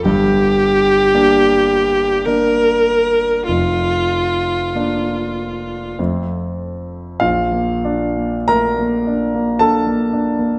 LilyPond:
<<
  \new Staff \with { instrumentName = "Viola" } { \time 3/4 \key bes \major \tempo 4 = 50 g'2 bes'4 | f'2 r4 | r2. | }
  \new Staff \with { instrumentName = "Grand piano" } { \time 3/4 \key bes \major r2. | r2. | <f' f''>4 <bes' bes''>4 <a' a''>4 | }
  \new Staff \with { instrumentName = "Grand piano" } { \time 3/4 \key bes \major <g,, g,>4 <bes d'>4 <bes d'>4 | <f,, f,>4 <bes d'>4 <f, a c' f'>4 | bes,,16 bes16 d'16 bes16 a16 bes16 d'16 bes16 d'16 bes16 d'16 bes16 | }
>>